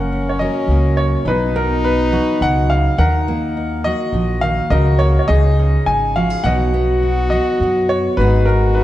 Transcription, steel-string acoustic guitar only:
0.00 1.26 F#2 medium
0.00 0.69 A#3 medium
0.00 0.11 C#4 medium
0.12 1.27 C#4 soft
0.41 2.12 F#3 medium
0.41 1.23 A#4 medium
0.71 1.23 A#3 medium
1.26 2.40 B2 medium
1.26 1.85 D#4 medium
1.56 2.95 B3 medium
1.85 2.96 D#4 medium
2.12 2.95 F#3 medium
2.12 3.85 F#4 medium
2.41 2.70 B2 medium
2.70 2.98 C#3 medium
2.98 4.41 D#3 medium
2.98 3.56 D#4 medium
3.28 4.68 A#3 medium
3.57 4.68 D#4 medium
3.86 4.13 F#3 medium
3.86 6.15 F#4 medium
4.14 4.42 F3 medium
4.43 4.71 D#3 medium
4.72 5.25 C#3 medium
4.72 5.29 C#4 medium
5.00 5.25 A#3 medium
5.29 6.15 C#3 medium
5.29 5.87 D#4 soft
5.59 6.42 C#4 medium
5.87 6.45 D#4 medium
6.16 6.41 F3 medium
6.16 6.30 F#4 medium
6.30 6.44 G#4 soft
6.44 8.18 B2 medium
6.44 7.31 F#3 medium
6.44 6.73 B3 medium
6.44 7.03 D#4 medium
6.44 7.31 F#4 medium
6.74 7.61 B3 medium
7.03 8.21 D#4 medium
7.32 8.15 F#3 medium
7.32 8.18 F#4 medium
7.63 8.16 B3 medium
8.19 8.84 G#2 medium
8.19 8.84 G#3 medium
8.19 8.47 B3 medium
8.19 8.77 D#4 medium
8.19 8.84 G#4 medium
8.49 8.84 B3 medium
8.78 8.84 D#4 medium

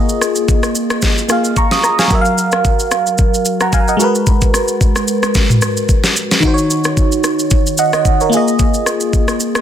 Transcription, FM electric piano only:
0.00 1.25 A#3 medium
0.00 1.26 F4 medium
0.00 1.27 G#4 medium
0.00 1.28 D#5 medium
1.28 2.10 A#3 medium
1.28 2.11 F4 medium
1.28 2.11 G#4 medium
1.28 1.58 F5 medium
1.57 1.71 A#5 medium
1.57 1.71 C#6 medium
1.72 1.83 D#6 medium
1.84 1.98 A#5 medium
1.99 2.20 F5 medium
1.99 2.24 G#5 medium
2.08 3.95 F#3 medium
2.08 3.96 F#4 medium
2.12 3.97 A#4 medium
2.12 2.20 E5 medium
2.21 3.22 F5 medium
3.61 3.73 F#5 medium
3.61 3.73 A#5 medium
3.73 3.88 F5 medium
3.73 3.87 G#5 medium
3.88 4.14 D#5 medium
3.88 4.14 F#5 medium
3.97 6.11 G#3 medium
3.97 6.12 F#4 medium
4.02 6.13 A#4 medium
4.02 6.14 B4 medium
6.40 8.27 D#3 medium
6.40 8.28 D#4 medium
6.45 8.30 F#4 medium
6.45 6.52 C5 medium
6.54 7.81 C#5 medium
7.79 7.93 D#5 medium
7.79 7.93 F#5 medium
7.94 8.19 D#5 medium
8.21 8.47 A#4 medium
8.21 8.46 C#5 medium
8.29 9.61 A#3 medium
8.29 9.61 F4 medium
8.34 9.61 G#4 medium
8.34 9.61 D#5 medium

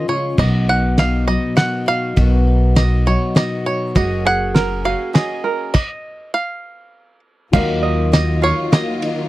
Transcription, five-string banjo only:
0.09 0.39 C#5 medium
0.39 0.69 D#5 medium
0.69 0.99 F#5 medium
0.99 1.26 F5 medium
1.28 1.55 D#5 medium
1.57 1.85 F#5 medium
1.88 2.73 F5 medium
2.76 3.07 D#5 medium
3.07 3.37 C#5 medium
3.37 3.64 D#5 medium
3.66 3.97 C#5 medium
3.96 4.24 D#5 medium
4.27 4.85 F#5 medium
4.85 5.14 F5 medium
5.15 5.71 D#5 medium
5.74 6.34 D#5 medium
6.34 7.19 F5 medium
8.14 8.41 D#5 medium
8.44 8.74 C#5 medium
8.73 9.29 D#5 medium

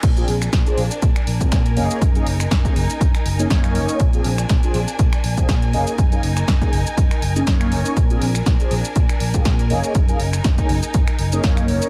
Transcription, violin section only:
0.03 1.75 D4 medium
0.03 3.96 A#4 medium
0.03 11.89 G#5 medium
1.77 3.98 D#4 medium
4.00 5.72 D4 medium
4.00 11.89 A#4 medium
5.74 7.94 D#4 medium
7.97 9.69 D4 medium
9.71 11.89 D#4 medium

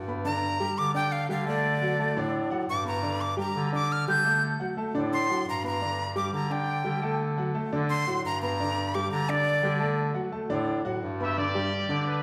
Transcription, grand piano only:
0.08 0.22 B3 medium
0.08 0.23 B4 medium
0.08 0.23 B5 medium
0.25 0.54 D3 medium
0.25 0.54 D4 medium
0.25 0.54 D5 medium
0.60 0.89 G3 medium
0.60 0.89 G4 medium
0.60 0.89 G5 medium
0.94 1.23 D4 medium
0.94 1.23 D5 medium
0.94 1.24 D6 medium
1.29 1.44 G3 medium
1.29 1.44 G4 medium
1.29 1.44 G5 medium
1.46 1.75 A3 medium
1.46 1.75 A4 medium
1.46 1.76 A5 medium
1.82 1.96 F#3 medium
1.82 1.96 F#4 medium
1.82 1.97 F#5 medium
1.99 2.14 A3 medium
1.99 2.14 A4 medium
1.99 2.14 A5 medium
2.16 2.45 D3 loud
2.16 2.45 D4 loud
2.16 2.46 D5 medium
2.50 2.80 F#3 medium
2.50 2.80 F#4 medium
2.50 2.80 F#5 medium
2.85 3.00 B3 medium
2.85 3.00 B4 medium
2.85 3.00 B5 medium
3.03 3.32 D3 medium
3.03 3.32 D4 medium
3.03 3.32 D5 medium
3.37 3.66 G3 medium
3.37 3.66 G4 medium
3.37 3.67 G5 medium
3.72 4.02 D4 medium
3.72 4.01 D5 medium
3.72 4.02 D6 medium
4.08 4.22 G3 medium
4.08 4.22 G4 medium
4.08 4.23 G5 medium
4.25 4.54 A3 medium
4.25 4.54 A4 medium
4.25 4.54 A5 medium
4.59 4.74 F#3 medium
4.59 4.74 F#4 medium
4.59 4.74 F#5 medium
4.77 4.92 A3 medium
4.77 4.92 A4 medium
4.77 4.92 A5 medium
4.94 5.23 D3 medium
4.94 5.23 D4 medium
4.94 5.23 D5 loud
5.30 5.58 F#3 medium
5.30 5.58 F#4 medium
5.30 5.59 F#5 medium
5.63 5.78 B3 medium
5.63 5.78 B4 medium
5.63 5.79 B5 medium
5.81 6.10 D3 medium
5.81 6.10 D4 medium
5.81 6.10 D5 medium
6.16 6.45 G3 medium
6.16 6.44 G4 medium
6.16 6.45 G5 medium
6.50 6.79 D4 medium
6.50 6.79 D5 medium
6.50 6.79 D6 medium
6.84 6.99 G3 medium
6.84 7.00 G4 medium
6.84 7.00 G5 medium
7.02 7.31 A3 medium
7.02 7.31 A4 medium
7.02 7.31 A5 medium
7.37 7.52 F#3 medium
7.37 7.52 F#4 medium
7.37 7.52 F#5 medium
7.55 7.69 A3 medium
7.55 7.69 A4 medium
7.55 7.69 A5 medium
7.73 8.01 D3 medium
7.73 8.01 D4 loud
7.73 8.01 D5 medium
8.07 8.36 F#3 medium
8.07 8.36 F#4 medium
8.07 8.36 F#5 medium
8.42 8.57 B3 medium
8.42 8.57 B4 medium
8.42 8.57 B5 medium
8.60 8.88 D3 medium
8.60 8.88 D4 medium
8.60 8.89 D5 medium
8.95 9.23 G3 medium
8.95 9.23 G4 medium
8.95 9.23 G5 medium
9.29 9.57 D4 medium
9.29 9.57 D5 medium
9.29 9.58 D6 medium
9.63 9.77 G3 medium
9.63 9.77 G4 medium
9.63 9.78 G5 medium
9.80 10.09 A3 medium
9.80 10.09 A4 medium
9.80 10.09 A5 medium
10.14 10.29 F#3 medium
10.14 10.29 F#4 medium
10.14 10.29 F#5 medium
10.32 10.47 A3 medium
10.32 10.47 A4 medium
10.32 10.47 A5 medium
10.49 10.78 D3 loud
10.49 10.79 D4 loud
10.49 10.79 D5 loud
10.85 11.13 F#3 medium
10.85 11.14 F#4 loud
10.85 11.14 F#5 medium
11.20 11.34 B3 medium
11.20 11.34 B4 medium
11.20 11.34 B5 medium
11.38 11.52 D3 medium
11.38 11.52 D4 medium
11.38 11.52 D5 medium
11.55 11.83 G3 medium
11.55 11.83 G4 medium
11.55 11.84 G5 medium
11.89 12.18 D4 medium
11.89 12.18 D5 medium
11.89 12.18 D6 medium

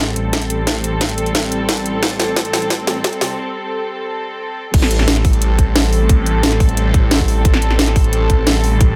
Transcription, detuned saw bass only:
0.00 0.15 A1 loud
0.16 1.50 A1 loud
1.52 2.01 A1 loud
2.03 2.86 A1 loud
2.87 3.03 A1 loud
3.21 3.37 C2 loud
4.74 5.57 A1 medium
5.59 6.93 A1 loud
6.94 7.44 A1 loud
7.45 8.28 A1 loud
8.30 8.96 A1 loud

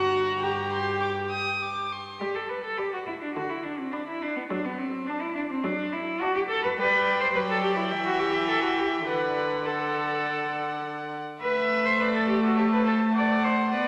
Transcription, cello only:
0.00 2.00 G2 medium
2.19 2.36 G4 medium
2.35 2.51 A4 soft
2.49 2.64 B4 soft
2.64 2.79 A4 medium
2.77 2.93 G4 medium
2.93 2.99 F#4 medium
3.06 3.12 E4 medium
3.21 3.35 D4 medium
3.35 3.51 F#4 medium
3.49 3.64 E4 medium
3.63 3.79 D4 soft
3.78 3.93 C4 medium
3.92 4.06 D4 medium
4.07 4.23 E4 medium
4.22 4.37 D4 medium
4.36 4.49 B3 medium
4.49 4.66 D4 medium
4.65 4.79 B3 medium
4.78 5.08 C4 medium
5.06 5.22 D4 medium
5.21 5.34 E4 medium
5.35 5.41 D4 medium
5.50 5.65 C4 medium
5.63 5.93 D4 medium
5.92 6.22 E4 medium
6.20 6.35 F#4 medium
6.35 6.41 G4 medium
6.48 6.62 A4 medium
6.63 6.69 B4 medium
6.78 7.20 B4 medium
7.20 7.26 C5 medium
7.35 7.41 B4 medium
7.50 7.62 A4 medium
7.62 7.75 G4 medium
7.76 7.84 E4 medium
8.05 8.21 F#4 medium
8.19 8.47 G4 medium
8.48 8.63 A4 medium
8.63 8.77 F#4 medium
8.78 8.86 G4 medium
9.07 9.67 B4 medium
9.66 10.84 A4 medium
11.42 11.87 B4 medium
11.85 12.01 C5 medium
12.00 12.14 B4 medium
12.14 12.28 A4 medium
12.28 12.43 G4 medium
12.43 12.57 F#4 medium
12.58 12.63 G4 medium
12.73 12.85 B4 medium
12.85 12.93 A4 medium
13.15 13.45 D5 medium
13.44 13.72 C5 medium
13.72 13.88 D5 medium

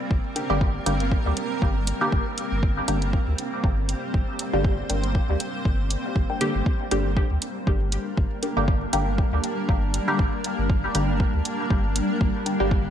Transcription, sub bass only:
0.11 0.19 G1 medium
0.50 0.80 G1 loud
0.86 1.17 G1 loud
1.26 1.33 D2 loud
1.62 1.93 G1 loud
2.12 2.21 G1 medium
2.52 2.81 G1 loud
2.88 3.19 G1 loud
3.27 3.34 D2 loud
3.64 3.95 G1 loud
4.14 4.23 G1 medium
4.53 4.83 G1 loud
4.90 5.21 G1 loud
5.29 5.36 D2 loud
5.65 5.96 G1 loud
6.16 6.25 G1 medium
6.55 6.62 G1 medium
6.92 7.22 G1 loud
7.31 7.38 D2 loud
7.67 7.98 G1 loud
8.17 8.26 G1 medium
8.57 8.86 G1 loud
8.93 9.24 G1 loud
9.32 9.39 D2 loud
9.69 10.00 G1 loud
10.19 10.28 G1 medium
10.58 10.88 G1 loud
10.95 11.26 G1 loud
11.34 11.41 D2 loud
11.70 12.01 G1 loud
12.21 12.30 G1 medium
12.60 12.90 G1 loud

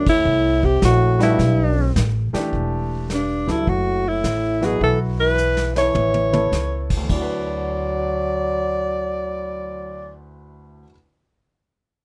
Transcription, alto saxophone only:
0.09 0.67 E4 medium
0.65 0.83 G4 medium
0.85 1.19 F#4 medium
1.23 1.93 E4 medium
3.14 3.53 D4 medium
3.52 3.71 E4 medium
3.69 4.09 F#4 medium
4.08 4.67 E4 medium
4.65 4.83 G#4 medium
4.84 5.00 A4 medium
5.20 5.73 B4 loud
5.78 6.87 C#5 medium
7.12 10.16 D5 medium

